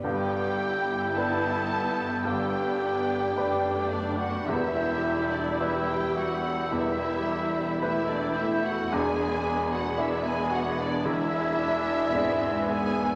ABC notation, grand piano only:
X:1
M:4/4
L:1/8
Q:1/4=54
K:G
V:1 name="Grand piano"
[G,,,G,,]2 [DGB]2 [G,,,G,,]2 [DGB]2 | [E,,,E,,]2 [EGB]2 [E,,,E,,]2 [EGB]2 | [E,,,E,,]2 [DE^G]2 [E,,,E,,]2 [DEG]2 |]